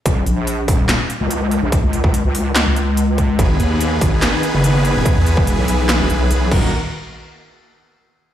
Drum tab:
CC |----------------|----------------|----------------|--------------x-|
HH |x-x-x-o-x-x-x-x-|x-x-x-o-x-x-x-x-|x-x-x-o-x-x-x-x-|x-x-x-o-x-x-x---|
CP |--------x-------|--------x-------|--------x-------|--------x-------|
SD |--------o-------|--------o-------|--------o-------|--------o-------|
BD |o-----o---------|o--o----------o-|o-----o---------|o--o----------o-|

CC |----------------|
HH |----------------|
CP |----------------|
SD |----------------|
BD |----------------|